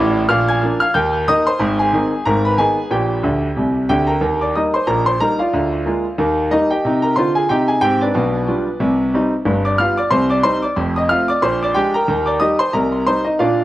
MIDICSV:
0, 0, Header, 1, 2, 480
1, 0, Start_track
1, 0, Key_signature, -3, "major"
1, 0, Tempo, 326975
1, 440, Time_signature, 4, 2, 24, 8
1, 20026, End_track
2, 0, Start_track
2, 0, Title_t, "Grand piano"
2, 0, Program_c, 0, 0
2, 0, Note_on_c, 0, 33, 89
2, 0, Note_on_c, 0, 45, 100
2, 0, Note_on_c, 0, 74, 75
2, 0, Note_on_c, 0, 86, 125
2, 339, Note_off_c, 0, 33, 0
2, 343, Note_off_c, 0, 45, 0
2, 403, Note_off_c, 0, 74, 0
2, 420, Note_on_c, 0, 89, 116
2, 424, Note_on_c, 0, 34, 79
2, 426, Note_on_c, 0, 46, 93
2, 437, Note_off_c, 0, 86, 0
2, 443, Note_on_c, 0, 77, 89
2, 696, Control_c, 0, 64, 127
2, 705, Note_off_c, 0, 77, 0
2, 711, Note_on_c, 0, 92, 86
2, 713, Note_off_c, 0, 89, 0
2, 728, Note_on_c, 0, 80, 76
2, 838, Note_off_c, 0, 34, 0
2, 840, Note_off_c, 0, 46, 0
2, 926, Note_on_c, 0, 53, 52
2, 934, Note_on_c, 0, 58, 50
2, 936, Control_c, 0, 64, 0
2, 936, Note_on_c, 0, 62, 56
2, 1171, Note_off_c, 0, 80, 0
2, 1176, Note_on_c, 0, 89, 119
2, 1188, Note_off_c, 0, 53, 0
2, 1194, Note_off_c, 0, 58, 0
2, 1195, Note_off_c, 0, 62, 0
2, 1196, Note_off_c, 0, 92, 0
2, 1199, Note_on_c, 0, 77, 87
2, 1382, Note_on_c, 0, 91, 113
2, 1384, Note_off_c, 0, 77, 0
2, 1386, Note_off_c, 0, 89, 0
2, 1390, Note_on_c, 0, 39, 96
2, 1392, Note_on_c, 0, 51, 85
2, 1397, Note_on_c, 0, 79, 80
2, 1660, Control_c, 0, 64, 127
2, 1661, Note_off_c, 0, 79, 0
2, 1673, Note_off_c, 0, 91, 0
2, 1801, Note_off_c, 0, 39, 0
2, 1802, Note_off_c, 0, 51, 0
2, 1880, Note_on_c, 0, 87, 127
2, 1881, Note_on_c, 0, 51, 63
2, 1887, Note_on_c, 0, 63, 54
2, 1889, Note_on_c, 0, 58, 58
2, 1891, Control_c, 0, 64, 0
2, 1894, Note_on_c, 0, 75, 95
2, 2144, Note_off_c, 0, 51, 0
2, 2148, Note_off_c, 0, 63, 0
2, 2149, Note_off_c, 0, 75, 0
2, 2150, Note_off_c, 0, 58, 0
2, 2154, Note_on_c, 0, 84, 102
2, 2162, Note_off_c, 0, 87, 0
2, 2169, Note_on_c, 0, 72, 72
2, 2341, Note_on_c, 0, 32, 89
2, 2344, Note_on_c, 0, 44, 84
2, 2611, Note_off_c, 0, 72, 0
2, 2617, Control_c, 0, 64, 127
2, 2631, Note_on_c, 0, 80, 86
2, 2637, Note_off_c, 0, 84, 0
2, 2654, Note_on_c, 0, 68, 63
2, 2756, Note_off_c, 0, 32, 0
2, 2757, Note_off_c, 0, 44, 0
2, 2832, Note_on_c, 0, 51, 48
2, 2845, Note_on_c, 0, 60, 48
2, 2845, Note_on_c, 0, 63, 55
2, 2850, Control_c, 0, 64, 0
2, 3097, Note_off_c, 0, 51, 0
2, 3107, Note_off_c, 0, 60, 0
2, 3107, Note_off_c, 0, 63, 0
2, 3277, Note_off_c, 0, 68, 0
2, 3309, Note_on_c, 0, 82, 95
2, 3312, Note_off_c, 0, 80, 0
2, 3313, Note_on_c, 0, 44, 74
2, 3321, Note_on_c, 0, 32, 78
2, 3327, Note_on_c, 0, 70, 70
2, 3561, Control_c, 0, 64, 127
2, 3585, Note_off_c, 0, 70, 0
2, 3595, Note_off_c, 0, 82, 0
2, 3596, Note_on_c, 0, 83, 83
2, 3620, Note_on_c, 0, 71, 64
2, 3722, Note_off_c, 0, 44, 0
2, 3727, Note_off_c, 0, 32, 0
2, 3788, Note_on_c, 0, 80, 98
2, 3794, Note_off_c, 0, 71, 0
2, 3794, Note_off_c, 0, 83, 0
2, 3794, Note_on_c, 0, 51, 50
2, 3804, Note_on_c, 0, 59, 53
2, 3809, Note_on_c, 0, 68, 71
2, 3812, Note_on_c, 0, 63, 50
2, 3818, Control_c, 0, 64, 0
2, 4059, Note_off_c, 0, 51, 0
2, 4066, Note_off_c, 0, 59, 0
2, 4072, Note_off_c, 0, 63, 0
2, 4249, Note_off_c, 0, 68, 0
2, 4268, Note_on_c, 0, 46, 70
2, 4272, Note_off_c, 0, 80, 0
2, 4274, Note_on_c, 0, 34, 59
2, 4274, Note_on_c, 0, 79, 72
2, 4280, Note_on_c, 0, 67, 57
2, 4519, Control_c, 0, 64, 127
2, 4679, Note_off_c, 0, 46, 0
2, 4682, Note_off_c, 0, 34, 0
2, 4746, Note_on_c, 0, 50, 67
2, 4751, Note_on_c, 0, 38, 61
2, 4778, Control_c, 0, 64, 0
2, 5109, Note_off_c, 0, 50, 0
2, 5113, Note_off_c, 0, 38, 0
2, 5231, Note_on_c, 0, 48, 62
2, 5239, Note_on_c, 0, 36, 56
2, 5489, Control_c, 0, 64, 127
2, 5593, Note_off_c, 0, 48, 0
2, 5597, Note_off_c, 0, 36, 0
2, 5690, Note_off_c, 0, 79, 0
2, 5698, Note_off_c, 0, 67, 0
2, 5712, Note_on_c, 0, 79, 95
2, 5714, Note_on_c, 0, 38, 71
2, 5719, Note_on_c, 0, 50, 76
2, 5720, Note_on_c, 0, 67, 62
2, 5732, Control_c, 0, 64, 0
2, 5970, Note_off_c, 0, 79, 0
2, 5972, Note_on_c, 0, 82, 69
2, 5981, Note_off_c, 0, 67, 0
2, 5990, Note_on_c, 0, 70, 52
2, 5992, Note_on_c, 0, 79, 54
2, 6075, Note_off_c, 0, 38, 0
2, 6078, Note_off_c, 0, 50, 0
2, 6180, Note_on_c, 0, 39, 65
2, 6181, Note_on_c, 0, 51, 68
2, 6440, Note_off_c, 0, 70, 0
2, 6441, Note_off_c, 0, 79, 0
2, 6441, Control_c, 0, 64, 127
2, 6465, Note_off_c, 0, 82, 0
2, 6477, Note_on_c, 0, 86, 68
2, 6485, Note_on_c, 0, 74, 55
2, 6595, Note_off_c, 0, 39, 0
2, 6595, Note_off_c, 0, 51, 0
2, 6665, Note_off_c, 0, 74, 0
2, 6675, Note_off_c, 0, 86, 0
2, 6686, Note_on_c, 0, 55, 41
2, 6686, Note_on_c, 0, 87, 71
2, 6697, Control_c, 0, 64, 0
2, 6697, Note_on_c, 0, 58, 39
2, 6702, Note_on_c, 0, 75, 56
2, 6707, Note_on_c, 0, 63, 45
2, 6948, Note_off_c, 0, 55, 0
2, 6953, Note_off_c, 0, 75, 0
2, 6955, Note_off_c, 0, 58, 0
2, 6957, Note_on_c, 0, 84, 81
2, 6962, Note_off_c, 0, 63, 0
2, 6964, Note_off_c, 0, 87, 0
2, 6985, Note_on_c, 0, 72, 68
2, 7150, Note_on_c, 0, 34, 67
2, 7150, Note_on_c, 0, 82, 92
2, 7151, Note_on_c, 0, 46, 60
2, 7155, Note_off_c, 0, 84, 0
2, 7156, Note_off_c, 0, 72, 0
2, 7164, Note_on_c, 0, 70, 66
2, 7424, Note_off_c, 0, 70, 0
2, 7430, Note_on_c, 0, 84, 90
2, 7436, Note_off_c, 0, 82, 0
2, 7448, Note_on_c, 0, 72, 55
2, 7561, Note_off_c, 0, 34, 0
2, 7562, Note_off_c, 0, 46, 0
2, 7628, Note_off_c, 0, 72, 0
2, 7632, Note_off_c, 0, 84, 0
2, 7637, Note_on_c, 0, 55, 43
2, 7640, Note_on_c, 0, 82, 105
2, 7641, Note_on_c, 0, 58, 52
2, 7648, Note_on_c, 0, 63, 49
2, 7654, Note_on_c, 0, 70, 73
2, 7901, Note_off_c, 0, 55, 0
2, 7904, Note_off_c, 0, 58, 0
2, 7909, Note_off_c, 0, 63, 0
2, 7909, Note_off_c, 0, 70, 0
2, 7918, Note_on_c, 0, 77, 60
2, 7921, Note_off_c, 0, 82, 0
2, 7934, Note_on_c, 0, 74, 41
2, 7942, Note_on_c, 0, 65, 49
2, 8123, Note_on_c, 0, 50, 67
2, 8132, Note_on_c, 0, 38, 59
2, 8360, Control_c, 0, 64, 127
2, 8529, Note_off_c, 0, 50, 0
2, 8534, Note_off_c, 0, 38, 0
2, 8591, Note_off_c, 0, 65, 0
2, 8597, Note_on_c, 0, 58, 41
2, 8598, Note_on_c, 0, 56, 39
2, 8613, Note_on_c, 0, 65, 45
2, 8621, Control_c, 0, 64, 0
2, 8861, Note_off_c, 0, 58, 0
2, 8862, Note_off_c, 0, 56, 0
2, 8873, Note_off_c, 0, 65, 0
2, 9076, Note_on_c, 0, 51, 76
2, 9077, Note_on_c, 0, 39, 70
2, 9309, Note_off_c, 0, 74, 0
2, 9335, Control_c, 0, 64, 127
2, 9360, Note_off_c, 0, 77, 0
2, 9485, Note_off_c, 0, 51, 0
2, 9486, Note_off_c, 0, 39, 0
2, 9555, Note_on_c, 0, 55, 47
2, 9559, Note_on_c, 0, 75, 90
2, 9567, Note_on_c, 0, 58, 40
2, 9572, Control_c, 0, 64, 0
2, 9578, Note_on_c, 0, 63, 67
2, 9820, Note_off_c, 0, 55, 0
2, 9829, Note_off_c, 0, 58, 0
2, 9832, Note_off_c, 0, 63, 0
2, 9839, Note_off_c, 0, 75, 0
2, 9841, Note_on_c, 0, 79, 77
2, 9856, Note_on_c, 0, 67, 54
2, 9861, Note_on_c, 0, 75, 55
2, 10053, Note_on_c, 0, 48, 72
2, 10077, Note_on_c, 0, 63, 56
2, 10286, Control_c, 0, 64, 127
2, 10296, Note_off_c, 0, 67, 0
2, 10299, Note_off_c, 0, 75, 0
2, 10310, Note_on_c, 0, 82, 77
2, 10322, Note_off_c, 0, 79, 0
2, 10332, Note_on_c, 0, 70, 52
2, 10432, Note_off_c, 0, 48, 0
2, 10446, Note_off_c, 0, 63, 0
2, 10509, Note_on_c, 0, 84, 77
2, 10511, Note_off_c, 0, 70, 0
2, 10513, Note_off_c, 0, 82, 0
2, 10519, Note_on_c, 0, 50, 60
2, 10532, Note_on_c, 0, 72, 52
2, 10539, Control_c, 0, 64, 0
2, 10547, Note_on_c, 0, 65, 72
2, 10789, Note_off_c, 0, 72, 0
2, 10792, Note_on_c, 0, 80, 85
2, 10797, Note_off_c, 0, 84, 0
2, 10812, Note_on_c, 0, 68, 62
2, 10904, Note_off_c, 0, 50, 0
2, 10921, Note_off_c, 0, 65, 0
2, 10991, Note_off_c, 0, 68, 0
2, 10995, Note_off_c, 0, 80, 0
2, 11000, Note_on_c, 0, 79, 85
2, 11010, Note_on_c, 0, 48, 68
2, 11019, Note_on_c, 0, 67, 70
2, 11032, Note_on_c, 0, 63, 61
2, 11272, Note_on_c, 0, 80, 77
2, 11273, Note_off_c, 0, 67, 0
2, 11283, Note_off_c, 0, 79, 0
2, 11283, Note_on_c, 0, 68, 60
2, 11390, Note_off_c, 0, 48, 0
2, 11404, Note_off_c, 0, 63, 0
2, 11467, Note_off_c, 0, 68, 0
2, 11468, Note_on_c, 0, 79, 112
2, 11472, Note_on_c, 0, 44, 72
2, 11475, Note_off_c, 0, 80, 0
2, 11489, Note_on_c, 0, 67, 78
2, 11504, Note_on_c, 0, 60, 73
2, 11748, Note_off_c, 0, 67, 0
2, 11757, Note_off_c, 0, 79, 0
2, 11764, Note_on_c, 0, 74, 70
2, 11781, Note_on_c, 0, 62, 49
2, 11785, Note_on_c, 0, 71, 53
2, 11860, Note_off_c, 0, 44, 0
2, 11879, Note_off_c, 0, 60, 0
2, 11961, Note_on_c, 0, 47, 78
2, 11969, Note_on_c, 0, 35, 57
2, 12222, Control_c, 0, 64, 127
2, 12369, Note_off_c, 0, 47, 0
2, 12374, Note_off_c, 0, 35, 0
2, 12431, Note_off_c, 0, 62, 0
2, 12443, Note_on_c, 0, 55, 44
2, 12450, Note_on_c, 0, 65, 47
2, 12453, Note_on_c, 0, 62, 47
2, 12454, Control_c, 0, 64, 0
2, 12707, Note_off_c, 0, 55, 0
2, 12712, Note_off_c, 0, 65, 0
2, 12714, Note_off_c, 0, 62, 0
2, 12920, Note_on_c, 0, 48, 83
2, 12922, Note_on_c, 0, 36, 69
2, 13157, Note_off_c, 0, 71, 0
2, 13178, Control_c, 0, 64, 127
2, 13205, Note_off_c, 0, 74, 0
2, 13329, Note_off_c, 0, 48, 0
2, 13330, Note_off_c, 0, 36, 0
2, 13417, Control_c, 0, 64, 0
2, 13422, Note_on_c, 0, 60, 52
2, 13424, Note_on_c, 0, 55, 56
2, 13433, Note_on_c, 0, 63, 67
2, 13681, Note_off_c, 0, 60, 0
2, 13682, Note_off_c, 0, 55, 0
2, 13688, Note_off_c, 0, 63, 0
2, 13879, Note_on_c, 0, 31, 79
2, 13886, Note_on_c, 0, 43, 67
2, 14143, Control_c, 0, 64, 127
2, 14167, Note_on_c, 0, 86, 84
2, 14181, Note_on_c, 0, 74, 60
2, 14289, Note_off_c, 0, 31, 0
2, 14293, Note_off_c, 0, 43, 0
2, 14358, Note_off_c, 0, 74, 0
2, 14362, Note_on_c, 0, 89, 96
2, 14363, Note_off_c, 0, 86, 0
2, 14367, Note_on_c, 0, 55, 47
2, 14374, Note_on_c, 0, 59, 46
2, 14375, Control_c, 0, 64, 0
2, 14388, Note_on_c, 0, 65, 42
2, 14388, Note_on_c, 0, 77, 72
2, 14630, Note_off_c, 0, 55, 0
2, 14635, Note_off_c, 0, 59, 0
2, 14639, Note_off_c, 0, 77, 0
2, 14644, Note_on_c, 0, 86, 86
2, 14645, Note_off_c, 0, 65, 0
2, 14646, Note_off_c, 0, 89, 0
2, 14658, Note_on_c, 0, 74, 65
2, 14836, Note_off_c, 0, 74, 0
2, 14837, Note_on_c, 0, 84, 97
2, 14838, Note_on_c, 0, 48, 81
2, 14842, Note_off_c, 0, 86, 0
2, 14846, Note_on_c, 0, 36, 79
2, 14858, Note_on_c, 0, 72, 80
2, 15102, Control_c, 0, 64, 127
2, 15114, Note_off_c, 0, 72, 0
2, 15121, Note_on_c, 0, 86, 86
2, 15123, Note_off_c, 0, 84, 0
2, 15131, Note_on_c, 0, 74, 70
2, 15248, Note_off_c, 0, 48, 0
2, 15253, Note_off_c, 0, 36, 0
2, 15312, Note_off_c, 0, 74, 0
2, 15321, Note_off_c, 0, 86, 0
2, 15321, Note_on_c, 0, 84, 113
2, 15328, Note_on_c, 0, 55, 55
2, 15330, Note_on_c, 0, 60, 61
2, 15334, Note_on_c, 0, 72, 81
2, 15337, Control_c, 0, 64, 0
2, 15337, Note_on_c, 0, 63, 69
2, 15591, Note_off_c, 0, 55, 0
2, 15592, Note_off_c, 0, 60, 0
2, 15592, Note_off_c, 0, 72, 0
2, 15597, Note_on_c, 0, 86, 83
2, 15598, Note_off_c, 0, 63, 0
2, 15605, Note_off_c, 0, 84, 0
2, 15623, Note_on_c, 0, 74, 61
2, 15798, Note_off_c, 0, 74, 0
2, 15799, Note_off_c, 0, 86, 0
2, 15803, Note_on_c, 0, 41, 84
2, 15810, Note_on_c, 0, 29, 73
2, 16052, Control_c, 0, 64, 127
2, 16091, Note_on_c, 0, 87, 75
2, 16112, Note_on_c, 0, 75, 74
2, 16211, Note_off_c, 0, 41, 0
2, 16215, Note_off_c, 0, 29, 0
2, 16282, Note_on_c, 0, 89, 111
2, 16284, Note_off_c, 0, 75, 0
2, 16286, Note_off_c, 0, 87, 0
2, 16290, Note_on_c, 0, 57, 50
2, 16293, Note_on_c, 0, 60, 49
2, 16302, Note_on_c, 0, 65, 55
2, 16303, Control_c, 0, 64, 0
2, 16304, Note_on_c, 0, 77, 79
2, 16552, Note_off_c, 0, 57, 0
2, 16554, Note_off_c, 0, 60, 0
2, 16557, Note_off_c, 0, 77, 0
2, 16561, Note_off_c, 0, 65, 0
2, 16563, Note_on_c, 0, 86, 95
2, 16565, Note_off_c, 0, 89, 0
2, 16586, Note_on_c, 0, 74, 75
2, 16760, Note_off_c, 0, 74, 0
2, 16762, Note_off_c, 0, 86, 0
2, 16771, Note_on_c, 0, 46, 74
2, 16771, Note_on_c, 0, 84, 96
2, 16776, Note_on_c, 0, 34, 72
2, 16791, Note_on_c, 0, 72, 78
2, 17012, Control_c, 0, 64, 127
2, 17041, Note_off_c, 0, 72, 0
2, 17050, Note_off_c, 0, 84, 0
2, 17068, Note_on_c, 0, 86, 86
2, 17085, Note_on_c, 0, 74, 80
2, 17176, Note_off_c, 0, 46, 0
2, 17178, Note_off_c, 0, 34, 0
2, 17243, Note_on_c, 0, 79, 96
2, 17250, Note_off_c, 0, 74, 0
2, 17250, Note_on_c, 0, 56, 59
2, 17251, Note_on_c, 0, 62, 54
2, 17254, Note_off_c, 0, 86, 0
2, 17260, Note_on_c, 0, 67, 87
2, 17262, Control_c, 0, 64, 0
2, 17512, Note_off_c, 0, 56, 0
2, 17512, Note_off_c, 0, 62, 0
2, 17515, Note_off_c, 0, 67, 0
2, 17525, Note_off_c, 0, 79, 0
2, 17533, Note_on_c, 0, 82, 90
2, 17550, Note_on_c, 0, 79, 55
2, 17551, Note_on_c, 0, 70, 64
2, 17736, Note_on_c, 0, 51, 83
2, 17739, Note_on_c, 0, 39, 62
2, 17971, Control_c, 0, 64, 127
2, 17985, Note_off_c, 0, 70, 0
2, 17985, Note_off_c, 0, 79, 0
2, 17997, Note_on_c, 0, 86, 76
2, 18009, Note_off_c, 0, 82, 0
2, 18014, Note_on_c, 0, 74, 68
2, 18138, Note_off_c, 0, 51, 0
2, 18139, Note_off_c, 0, 39, 0
2, 18193, Note_off_c, 0, 74, 0
2, 18198, Note_off_c, 0, 86, 0
2, 18201, Note_on_c, 0, 87, 96
2, 18205, Note_on_c, 0, 55, 45
2, 18209, Note_on_c, 0, 63, 52
2, 18217, Note_on_c, 0, 75, 63
2, 18220, Control_c, 0, 64, 0
2, 18223, Note_on_c, 0, 67, 52
2, 18467, Note_off_c, 0, 55, 0
2, 18471, Note_off_c, 0, 63, 0
2, 18473, Note_off_c, 0, 75, 0
2, 18481, Note_off_c, 0, 67, 0
2, 18484, Note_off_c, 0, 87, 0
2, 18487, Note_on_c, 0, 84, 101
2, 18503, Note_on_c, 0, 72, 76
2, 18678, Note_off_c, 0, 72, 0
2, 18683, Note_off_c, 0, 84, 0
2, 18694, Note_on_c, 0, 82, 90
2, 18695, Note_on_c, 0, 36, 67
2, 18696, Note_on_c, 0, 48, 78
2, 18711, Note_on_c, 0, 70, 67
2, 18930, Control_c, 0, 64, 127
2, 19097, Note_off_c, 0, 36, 0
2, 19097, Note_off_c, 0, 48, 0
2, 19143, Note_off_c, 0, 70, 0
2, 19167, Note_off_c, 0, 82, 0
2, 19179, Control_c, 0, 64, 0
2, 19181, Note_on_c, 0, 84, 93
2, 19183, Note_on_c, 0, 55, 48
2, 19193, Note_on_c, 0, 63, 51
2, 19193, Note_on_c, 0, 72, 77
2, 19440, Note_off_c, 0, 55, 0
2, 19440, Note_off_c, 0, 72, 0
2, 19442, Note_off_c, 0, 63, 0
2, 19444, Note_on_c, 0, 75, 68
2, 19453, Note_off_c, 0, 84, 0
2, 19464, Note_on_c, 0, 63, 54
2, 19637, Note_off_c, 0, 63, 0
2, 19640, Note_off_c, 0, 75, 0
2, 19660, Note_on_c, 0, 77, 78
2, 19663, Note_on_c, 0, 46, 66
2, 19671, Note_on_c, 0, 65, 58
2, 19675, Note_on_c, 0, 74, 64
2, 19691, Note_on_c, 0, 62, 67
2, 19886, Control_c, 0, 64, 127
2, 20026, Note_off_c, 0, 46, 0
2, 20026, Note_off_c, 0, 62, 0
2, 20026, Note_off_c, 0, 65, 0
2, 20026, Note_off_c, 0, 74, 0
2, 20026, Note_off_c, 0, 77, 0
2, 20026, End_track
0, 0, End_of_file